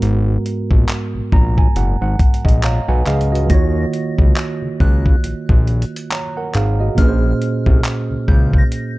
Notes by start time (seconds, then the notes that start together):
Already playing: G#2 G#3 B3 F#4 A#4
0.02 G#1, closed hi-hat
0.46 closed hi-hat
0.71 A#1, kick
0.89 clap, closed hi-hat
1.14 A#1
1.32 A#1 A#5, kick
1.58 G#5, kick
1.76 F#1 F#5, closed hi-hat
2.01 G#1 F#5
2.19 kick, closed hi-hat
2.34 closed hi-hat
2.45 A#1 D#5, kick, closed hi-hat
2.63 C#5 F5 A#5, clap, closed hi-hat
2.88 B1 B4 F#5 G#5
3.06 C#2 G#4 D#5 F5, clap, closed hi-hat, open hi-hat
3.21 closed hi-hat
3.32 F#4 D#5, closed hi-hat
3.47 D#2 D#3 A#3 F4 A#6, kick, closed hi-hat
3.52 F#4 C#5
3.93 closed hi-hat
4.18 C#2, kick
4.36 clap, closed hi-hat
4.62 C#2
4.80 C#2 F#6, kick
5.06 kick
5.24 A#1, closed hi-hat
5.49 A#1, kick
5.67 closed hi-hat
5.82 closed hi-hat
5.96 closed hi-hat
6.11 C#5 A#5, clap, closed hi-hat
6.37 A#4 F#5
6.54 G#1 G#4 F5, clap, closed hi-hat
6.80 F#4 D#5
6.95 A#1 A#2 A#3 C#4 F6, kick, closed hi-hat
7.00 G#4 B4
7.09 C5
7.42 closed hi-hat
7.66 C2, kick
7.84 clap, closed hi-hat
8.10 C#2
8.28 C#2 G6, kick
8.54 kick
8.58 A#6
8.72 closed hi-hat